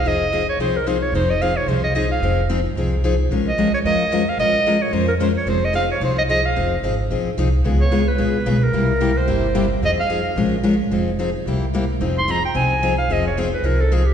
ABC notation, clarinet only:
X:1
M:4/4
L:1/8
Q:"Swing" 1/4=221
K:Fm
V:1 name="Clarinet"
e3 d c B c d | c e f d c e e f- | f2 z6 | z e2 d e3 f |
e3 d c B c d | c e f d c e e f- | f2 z6 | z d2 _c4 B- |
B3 c4 z | e f4 z3 | z8 | z c' b g a3 f |
e d c =B _B =A _A G |]